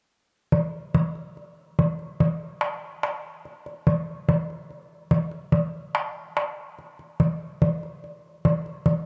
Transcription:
0.52 darbuka dum
0.95 darbuka dum
1.15 darbuka ka
1.37 darbuka ka
1.79 darbuka dum
1.99 darbuka ka
2.20 darbuka dum
2.61 darbuka tek
3.03 darbuka tek
3.45 darbuka ka
3.66 darbuka ka
3.87 darbuka dum
4.29 darbuka dum
4.50 darbuka ka
4.70 darbuka ka
5.11 darbuka dum
5.31 darbuka ka
5.52 darbuka dum
5.95 darbuka tek
6.37 darbuka tek
6.79 darbuka ka
6.99 darbuka ka
7.20 darbuka dum
7.62 darbuka dum
7.83 darbuka ka
8.04 darbuka ka
8.45 darbuka dum
8.66 darbuka ka
8.86 darbuka dum

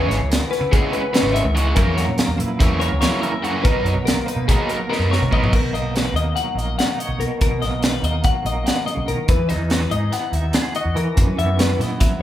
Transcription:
Already playing: C#3 E3 G#3 C#4 E4 G#4
0.08 G#1 E3 C#5, snare, closed hi-hat
0.19 C#2
0.30 B3 A#4, snare, closed hi-hat
0.51 C#4 B4, snare, closed hi-hat
0.61 C#3 E4
0.72 C#3 E3 G#3 B3 C#4 G#4, kick, closed hi-hat
0.92 B4, closed hi-hat
1.13 C#3 E3 G#3 C#4 B4, snare, closed hi-hat
1.23 G#1
1.34 D#3 E5, closed hi-hat
1.45 C#2
1.55 C#3 E3 G#3 C#4 F#5, closed hi-hat
1.75 F#2 C#3 E3 A#3 C#4 A#4, kick, closed hi-hat
1.86 E2
1.96 F#3 C#5, snare, closed hi-hat
2.08 A#2
2.17 A#3 A#4, snare, closed hi-hat
2.28 E2
2.38 A#2 E4 B4, closed hi-hat
2.59 E2 C#3 E3 A#3 C#4 A#4, kick, closed hi-hat
2.80 A#4 C#5, closed hi-hat
2.91 C#2
3.01 C#3 E3 F#3 A#3 C#4 E4 C#5, snare, closed hi-hat
3.22 A#4 E5, closed hi-hat
3.42 F#2 C#3 E3 A#3 C#4 F#4 F#5, closed hi-hat
3.55 G#4
3.64 B1 B2 F#3 B3 D#4 A#4 B4, kick, closed hi-hat
3.84 F#2 F#3 C#5, closed hi-hat
3.95 B1
4.05 A#3 A#4, snare, closed hi-hat
4.26 D#4 B4, closed hi-hat
4.36 B2
4.48 B2 F#3 A#3 B3 D#4 G#4, kick, closed hi-hat
4.69 A#4, closed hi-hat
4.90 B2 F#3 B3 D#4 A#4, snare
5.00 F#2
5.11 A#4 C#5, snare
5.21 B1, mid tom
5.31 B2 F#3 B3 D#4 A#4 D#5, kick
5.44 floor tom
5.53 B1 B2 A#4, kick, crash
5.62 B2
5.72 B1 A#3 D#5, closed hi-hat
5.95 C#4 B4, snare, closed hi-hat
6.06 D#4
6.14 D#2 D#5, closed hi-hat
6.18 A#3
6.36 F#3 F#5, closed hi-hat
6.55 A#1 D#5, closed hi-hat
6.60 A#3
6.79 C#4 F#5, snare, closed hi-hat
6.91 D#4
6.99 C#5 D#5, closed hi-hat
7.09 B1
7.19 B2 A#4, closed hi-hat
7.41 B1 B2 A#4, kick, closed hi-hat
7.51 B2
7.62 B1 A#3 D#5, snare, closed hi-hat
7.83 D#4 B4, snare, closed hi-hat
8.03 D#2 D#5, closed hi-hat
8.07 A#3
8.24 F#3 F#5, kick, closed hi-hat
8.45 A#1 D#5, closed hi-hat
8.49 A#3
8.66 B2 F#5, snare, closed hi-hat
8.86 C#3 D#5, closed hi-hat
8.97 B1
9.08 B2 D#3 A#4, closed hi-hat
9.28 E2 E3 B4, kick, closed hi-hat
9.40 E3
9.49 E2 D#4 D#5, snare, closed hi-hat
9.70 F#4 B4, snare, closed hi-hat
9.81 G#4
9.91 G#2 D#4 D#5, closed hi-hat
10.12 B3 F#5, snare, closed hi-hat
10.33 D#2 D#4 E5, closed hi-hat
10.53 G#4 F#5, snare, closed hi-hat
10.75 F#4 D#5, closed hi-hat
10.86 E2
10.95 E3 A#4, closed hi-hat
11.17 F#2 B4, kick, closed hi-hat
11.27 F#3
11.37 F#2 B3 E5, closed hi-hat
11.59 C#4 B4, snare, closed hi-hat
11.70 E4
11.79 A#2 B3 D#5, snare, closed hi-hat
12.00 F#3 E5, kick, snare, closed hi-hat

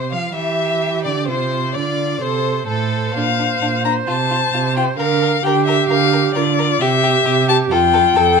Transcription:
Already playing: C3 C5
0.12 F3 F5
0.35 E3 G4 E5
1.05 D3 D5
1.28 C3 F4 C5
1.74 D3 F4 D5
2.21 C3 A4 C5
2.67 A2 A4 C5
3.14 A#2 D4 F5
3.39 D4
3.62 A#2 D4
3.85 D4 A#5
4.07 C3 F4 A5
4.31 F4
4.54 C3 F4
4.76 F4 G5
4.98 D3 A#4 F5
5.22 A#4
5.43 D3 G4 A#4 G5
5.66 A#4 E5
5.89 D3 A#4 F5
6.13 A#4
6.35 D3 F4 A#4 D5
6.59 A#4
6.81 C3 G4 E5
7.04 G4
7.26 C3 G4
7.49 G4 A5
7.71 F2 F4 A4 G5
7.94 A4
8.16 F2 A4

